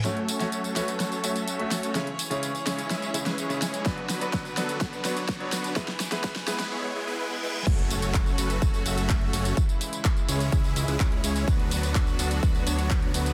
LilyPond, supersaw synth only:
\new Staff \with { instrumentName = "Supersaw synth" } { \time 4/4 \key fis \minor \tempo 4 = 126 <a cis' fis' a' cis''>4. <a cis' fis' a' b'>8 <a cis' fis' a' cis''>8 <a cis' fis' a' e''>4 <a cis' fis' a' cis''>8 | r4. <gis cis' e' gis' cis''>8 <gis cis' e' gis' e''>8 <gis cis' e' gis' e''>16 <gis cis' e' gis' b'>16 <gis cis' e' gis' cis''>8 <gis cis' e' gis' cis''>8 | r4. <fis b d' fis' a'>8 <fis b d' fis' b'>8 <fis b d' fis' cis''>4 <fis b d' fis' b'>8 | r4. <gis b e' gis' b'>8 <gis b e' gis' cis''>8 <gis b e' gis' cis''>16 <gis b e' gis' b'>16 <gis b e' gis' b'>8 <gis b e' gis' b'>8 |
a4. <a cis' fis' a' b'>8 fis'8 <a cis' fis' a' e''>4 <a cis' fis' a' cis''>8 | r4. <gis cis' e' gis' cis''>8 <gis cis' e' gis'>8 <gis cis' e' gis' e''>16 <gis cis' e' gis' b'>16 <gis cis' e' gis' cis''>8 <gis cis' e' gis' cis''>8 | <b d' b'>4. <fis b d' fis' a'>8 r8 <fis b d' fis' cis''>4 <fis b d' fis' b'>8 | }